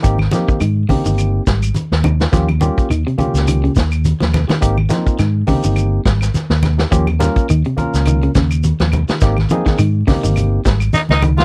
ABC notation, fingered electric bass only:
X:1
M:4/4
L:1/16
Q:"Swing 16ths" 1/4=105
K:Ab
V:1 name="Fingered electric bass" clef=bass
A,,,2 z2 A,,2 z G,,,3 A,,,2 z E,,3 | E,,3 z E,, z2 D,,3 E,,3 E,,2 z | A,,,2 z2 A,,2 z G,,,3 A,,,2 z E,,3 | E,,3 z E,, z2 D,,3 E,,3 E,,2 z |
A,,,2 z2 A,,2 z G,,,3 A,,,2 z D,,3 |]